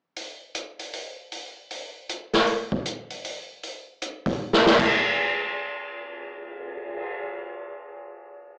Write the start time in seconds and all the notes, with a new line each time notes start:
0.17 open hi-hat
0.55 closed hi-hat
0.79 open hi-hat
0.93 open hi-hat
1.32 open hi-hat
1.70 open hi-hat
2.09 closed hi-hat
2.33 snare, open hi-hat
2.47 open hi-hat
2.72 kick
2.86 closed hi-hat
3.10 open hi-hat
3.25 open hi-hat
3.63 open hi-hat
4.02 closed hi-hat
4.26 kick, open hi-hat
4.53 snare
4.67 snare
4.79 kick, crash
5.05 cymbal swell